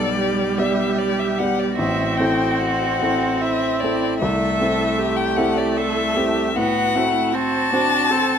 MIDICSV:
0, 0, Header, 1, 5, 480
1, 0, Start_track
1, 0, Tempo, 816327
1, 1043, Time_signature, 3, 2, 24, 8
1, 2007, Tempo, 780234
1, 5066, End_track
2, 0, Start_track
2, 0, Title_t, "Violin"
2, 0, Program_c, 0, 40
2, 0, Note_on_c, 0, 74, 82
2, 345, Note_on_c, 0, 76, 71
2, 354, Note_off_c, 0, 74, 0
2, 580, Note_on_c, 0, 74, 75
2, 589, Note_off_c, 0, 76, 0
2, 703, Note_on_c, 0, 76, 66
2, 712, Note_off_c, 0, 74, 0
2, 815, Note_on_c, 0, 78, 77
2, 824, Note_off_c, 0, 76, 0
2, 936, Note_on_c, 0, 74, 68
2, 945, Note_off_c, 0, 78, 0
2, 1041, Note_off_c, 0, 74, 0
2, 1044, Note_on_c, 0, 76, 78
2, 1276, Note_on_c, 0, 79, 76
2, 1285, Note_off_c, 0, 76, 0
2, 1519, Note_on_c, 0, 78, 74
2, 1528, Note_off_c, 0, 79, 0
2, 2007, Note_on_c, 0, 76, 77
2, 2016, Note_off_c, 0, 78, 0
2, 2244, Note_on_c, 0, 74, 69
2, 2253, Note_off_c, 0, 76, 0
2, 2475, Note_off_c, 0, 74, 0
2, 2479, Note_on_c, 0, 76, 86
2, 3085, Note_on_c, 0, 79, 74
2, 3094, Note_off_c, 0, 76, 0
2, 3206, Note_on_c, 0, 78, 81
2, 3215, Note_off_c, 0, 79, 0
2, 3336, Note_on_c, 0, 74, 72
2, 3345, Note_off_c, 0, 78, 0
2, 3459, Note_on_c, 0, 76, 81
2, 3468, Note_off_c, 0, 74, 0
2, 3944, Note_on_c, 0, 78, 92
2, 3953, Note_off_c, 0, 76, 0
2, 4427, Note_on_c, 0, 81, 102
2, 4436, Note_off_c, 0, 78, 0
2, 5066, Note_off_c, 0, 81, 0
2, 5066, End_track
3, 0, Start_track
3, 0, Title_t, "Cello"
3, 0, Program_c, 1, 42
3, 0, Note_on_c, 1, 69, 63
3, 81, Note_off_c, 1, 69, 0
3, 95, Note_on_c, 1, 67, 68
3, 1028, Note_off_c, 1, 67, 0
3, 1045, Note_on_c, 1, 66, 64
3, 2009, Note_on_c, 1, 64, 60
3, 2018, Note_off_c, 1, 66, 0
3, 2495, Note_off_c, 1, 64, 0
3, 2501, Note_on_c, 1, 69, 62
3, 2973, Note_on_c, 1, 67, 66
3, 2982, Note_off_c, 1, 69, 0
3, 3457, Note_on_c, 1, 69, 64
3, 3467, Note_off_c, 1, 67, 0
3, 3698, Note_on_c, 1, 67, 61
3, 3707, Note_off_c, 1, 69, 0
3, 3940, Note_off_c, 1, 67, 0
3, 3945, Note_on_c, 1, 66, 63
3, 4185, Note_on_c, 1, 64, 60
3, 4194, Note_off_c, 1, 66, 0
3, 4416, Note_on_c, 1, 66, 70
3, 4425, Note_off_c, 1, 64, 0
3, 4894, Note_on_c, 1, 69, 65
3, 4903, Note_off_c, 1, 66, 0
3, 5066, Note_off_c, 1, 69, 0
3, 5066, End_track
4, 0, Start_track
4, 0, Title_t, "Grand piano"
4, 0, Program_c, 2, 0
4, 0, Control_c, 2, 64, 127
4, 0, Note_on_c, 2, 35, 54
4, 0, Note_on_c, 2, 59, 46
4, 0, Note_on_c, 2, 67, 40
4, 0, Note_on_c, 2, 74, 44
4, 313, Note_off_c, 2, 59, 0
4, 315, Note_off_c, 2, 67, 0
4, 316, Note_off_c, 2, 74, 0
4, 340, Note_on_c, 2, 59, 46
4, 343, Note_on_c, 2, 67, 43
4, 346, Note_on_c, 2, 74, 52
4, 788, Note_off_c, 2, 59, 0
4, 790, Note_off_c, 2, 67, 0
4, 792, Note_off_c, 2, 74, 0
4, 819, Note_on_c, 2, 59, 41
4, 823, Note_on_c, 2, 67, 42
4, 823, Note_on_c, 2, 74, 43
4, 1026, Note_off_c, 2, 59, 0
4, 1028, Note_off_c, 2, 67, 0
4, 1028, Note_off_c, 2, 74, 0
4, 1051, Note_on_c, 2, 33, 61
4, 1055, Note_off_c, 2, 35, 0
4, 1055, Control_c, 2, 64, 0
4, 1157, Control_c, 2, 64, 127
4, 1280, Note_off_c, 2, 33, 0
4, 1288, Note_on_c, 2, 60, 42
4, 1292, Note_on_c, 2, 64, 44
4, 1296, Note_on_c, 2, 69, 48
4, 1745, Note_off_c, 2, 60, 0
4, 1747, Note_off_c, 2, 64, 0
4, 1749, Note_off_c, 2, 69, 0
4, 1777, Note_on_c, 2, 60, 46
4, 1781, Note_on_c, 2, 69, 49
4, 1782, Note_on_c, 2, 64, 47
4, 2233, Note_off_c, 2, 60, 0
4, 2235, Note_off_c, 2, 69, 0
4, 2236, Note_off_c, 2, 64, 0
4, 2264, Note_on_c, 2, 60, 41
4, 2265, Note_on_c, 2, 64, 41
4, 2270, Note_on_c, 2, 69, 47
4, 2476, Note_off_c, 2, 60, 0
4, 2477, Note_off_c, 2, 64, 0
4, 2480, Note_off_c, 2, 69, 0
4, 2504, Control_c, 2, 64, 0
4, 2504, Note_on_c, 2, 36, 61
4, 2608, Control_c, 2, 64, 127
4, 2729, Note_off_c, 2, 36, 0
4, 2741, Note_on_c, 2, 60, 47
4, 2744, Note_on_c, 2, 64, 43
4, 2746, Note_on_c, 2, 69, 52
4, 3186, Note_off_c, 2, 60, 0
4, 3187, Note_off_c, 2, 64, 0
4, 3188, Note_off_c, 2, 69, 0
4, 3213, Note_on_c, 2, 60, 50
4, 3215, Note_on_c, 2, 69, 53
4, 3216, Note_on_c, 2, 64, 48
4, 3673, Note_off_c, 2, 60, 0
4, 3674, Note_off_c, 2, 69, 0
4, 3675, Note_off_c, 2, 64, 0
4, 3702, Note_on_c, 2, 60, 44
4, 3702, Note_on_c, 2, 64, 43
4, 3703, Note_on_c, 2, 69, 44
4, 3917, Note_off_c, 2, 60, 0
4, 3917, Note_off_c, 2, 64, 0
4, 3918, Note_off_c, 2, 69, 0
4, 3944, Note_on_c, 2, 45, 58
4, 3950, Control_c, 2, 64, 0
4, 4031, Control_c, 2, 64, 127
4, 4176, Note_off_c, 2, 45, 0
4, 4186, Note_on_c, 2, 60, 46
4, 4188, Note_on_c, 2, 66, 43
4, 4190, Note_on_c, 2, 72, 47
4, 4629, Note_off_c, 2, 60, 0
4, 4631, Note_off_c, 2, 66, 0
4, 4631, Note_off_c, 2, 72, 0
4, 4660, Note_on_c, 2, 60, 47
4, 4663, Note_on_c, 2, 66, 48
4, 4664, Note_on_c, 2, 72, 51
4, 5066, Note_off_c, 2, 60, 0
4, 5066, Note_off_c, 2, 66, 0
4, 5066, Note_off_c, 2, 72, 0
4, 5066, End_track
5, 0, Start_track
5, 0, Title_t, "Viola"
5, 0, Program_c, 3, 41
5, 0, Note_on_c, 3, 55, 65
5, 1042, Note_off_c, 3, 55, 0
5, 1046, Note_on_c, 3, 60, 68
5, 2470, Note_off_c, 3, 60, 0
5, 2508, Note_on_c, 3, 57, 67
5, 3920, Note_off_c, 3, 57, 0
5, 3947, Note_on_c, 3, 59, 67
5, 4194, Note_on_c, 3, 57, 59
5, 4203, Note_off_c, 3, 59, 0
5, 4424, Note_on_c, 3, 60, 67
5, 4433, Note_off_c, 3, 57, 0
5, 4655, Note_off_c, 3, 60, 0
5, 4660, Note_on_c, 3, 62, 68
5, 4899, Note_on_c, 3, 60, 63
5, 4908, Note_off_c, 3, 62, 0
5, 5066, Note_off_c, 3, 60, 0
5, 5066, End_track
0, 0, End_of_file